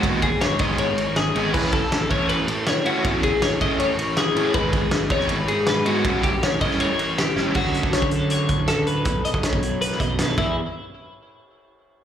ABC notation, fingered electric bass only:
X:1
M:4/4
L:1/16
Q:1/4=159
K:Alyd
V:1 name="Fingered electric bass" clef=bass
D,,3 G,,,2 G,,4- G,, G,,,4 G,,,2 | A,,,3 A,,,2 A,,,4- A,,, A,,6 | E,,3 A,,,2 A,,4- A,, A,,,4 A,,2 | G,,,3 G,,,2 G,,,4- G,,, G,,6 |
A,,,3 A,,,2 A,,4- A,, A,,,4 A,,,2 | =D,,2 z D,,2 =D,4- D, D,,6 | B,,,2 B,,, B,,, z B,,,4- B,,, B,,,4 E,,2 | z16 |]